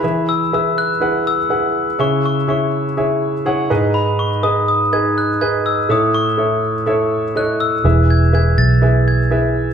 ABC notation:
X:1
M:4/4
L:1/16
Q:1/4=123
K:E
V:1 name="Glockenspiel"
b2 e'2 e'2 f'4 e'6 | c'2 c'2 c'8 z4 | b2 c'2 d'2 d'2 g'2 f'2 g'2 e'2 | d'2 c'8- c'2 f'2 e'2- |
e'2 g'2 g'2 a'4 g'6 |]
V:2 name="Grand piano"
[EGBe]3 z [EGBe]3 z [EGBf]3 z [EGBf]3 z | [EGce]3 z [EGce]3 z [EGce]3 z [EGcf]2 [DGBd]2- | [DGBd]2 z2 [DGBd]3 z [DGBd]3 z [DGBd]3 z | [EAce]3 z [EAce]3 z [EAce]3 z [EAcd]3 z |
[EGBe]3 z [EGBe]3 z [EGBe]3 z [EGBe]3 z |]
V:3 name="Grand piano" clef=bass
E,6 z8 z2 | C,6 z8 G,,2- | G,,4 z12 | A,,6 z8 z2 |
E,6 z8 z2 |]
V:4 name="Fingered electric bass" clef=bass
z16 | z16 | z16 | z16 |
E,,,6 B,,,8- B,,,2 |]